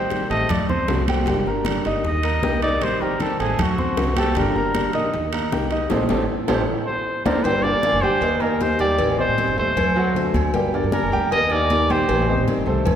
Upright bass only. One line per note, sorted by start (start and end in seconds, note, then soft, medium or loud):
0.00 0.28 A1 medium
0.30 0.48 A1 medium
0.50 0.88 D2 loud
0.88 1.27 C2 medium
1.26 1.45 G1 loud
1.46 1.83 G1 medium
1.86 2.03 G1 medium
2.04 2.44 D#2 medium
2.44 2.82 C2 medium
2.82 3.00 A1 loud
3.02 3.38 A1 medium
3.40 3.58 A1 medium
3.59 3.97 D2 loud
3.97 4.37 C2 medium
4.36 4.55 G1 loud
4.55 4.92 G1 medium
4.94 5.12 A#1 medium
5.14 5.53 D#2 loud
5.53 5.91 C2 loud
5.92 6.06 A1 loud
6.10 6.25 A1 medium
6.49 6.63 A1 medium
7.25 7.40 D2 medium
7.44 7.72 G1 loud
7.73 7.83 G2 medium
7.92 8.01 F#1 loud
8.02 8.20 D2 medium
8.21 8.77 D#2 loud
8.80 8.98 D#2 medium
8.99 9.27 A1 loud
9.28 9.38 A2 medium
9.47 9.57 G1 medium
9.58 9.75 D#2 loud
9.76 10.32 D2 medium
10.34 10.53 D2 medium
10.54 10.82 G1 loud
10.84 10.93 G2 medium
11.03 11.12 F#1 medium
11.12 11.31 D2 loud
11.32 11.87 D#2 loud
11.90 12.08 A#1 medium
12.09 12.36 A1 loud
12.37 12.47 A2 medium
12.57 12.65 G1 medium
12.66 12.85 C2 loud
12.86 12.95 D2 loud